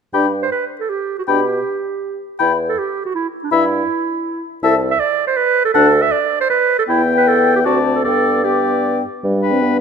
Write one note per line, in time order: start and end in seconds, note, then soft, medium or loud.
0.13 0.45 G2 soft
0.13 0.27 D4 soft
0.13 0.26 G4 soft
0.13 0.27 G5 soft
0.13 0.31 B5 soft
0.43 0.47 C5 medium
0.52 0.65 B4 soft
0.80 0.91 A4 soft
0.89 1.18 G4 medium
1.19 1.23 F#4 soft
1.28 1.59 B2 soft
1.28 1.41 D4 soft
1.28 2.20 G4 soft
1.28 1.41 G5 soft
1.28 1.45 B5 soft
2.39 2.71 E2 soft
2.39 2.53 E4 soft
2.39 2.52 G5 soft
2.39 2.57 B5 soft
2.69 2.80 A4 medium
2.79 3.05 G4 medium
3.05 3.14 F#4 medium
3.15 3.27 E4 medium
3.44 3.51 D4 soft
3.51 3.82 G2 soft
3.51 3.64 E4 soft
3.51 4.42 E4 medium
3.51 3.65 E5 soft
3.51 3.68 B5 soft
4.62 4.94 C2 medium
4.62 4.75 E4 soft
4.62 4.75 A4 medium
4.62 4.76 E5 soft
4.62 4.80 A5 medium
4.91 5.01 E5 medium
5.00 5.26 D5 medium
5.27 5.38 C5 medium
5.37 5.64 B4 medium
5.65 5.69 A4 medium
5.74 6.07 D2 medium
5.74 5.88 D4 medium
5.74 6.04 A4 medium
5.74 5.88 F#5 medium
5.74 5.92 A5 medium
6.02 6.13 E5 medium
6.12 6.40 D5 medium
6.41 6.45 C5 medium
6.50 6.78 B4 medium
6.79 6.83 A4 medium
6.88 7.68 E2 medium
6.88 7.67 B3 medium
6.88 7.02 E4 medium
6.88 7.67 G5 medium
7.17 7.29 B4 medium
7.28 7.55 A4 medium
7.56 7.60 G4 medium
7.65 8.04 D2 medium
7.65 8.06 C4 soft
7.65 7.79 F#4 medium
7.65 8.04 D5 soft
7.65 8.05 A5 soft
7.95 8.04 A4 medium
8.04 9.01 G2 soft
8.04 8.44 B3 soft
8.04 8.46 A4 medium
8.04 8.43 D5 soft
8.04 8.44 G5 soft
8.44 9.02 B3 soft
8.44 9.03 G4 medium
8.44 9.02 D5 soft
8.44 9.02 G5 soft
9.23 9.56 G2 medium
9.23 9.53 G3 medium
9.42 9.79 D4 soft
9.42 9.78 B4 soft
9.42 9.79 G5 soft
9.51 9.62 C4 medium
9.61 9.81 G2 soft
9.61 9.81 B3 medium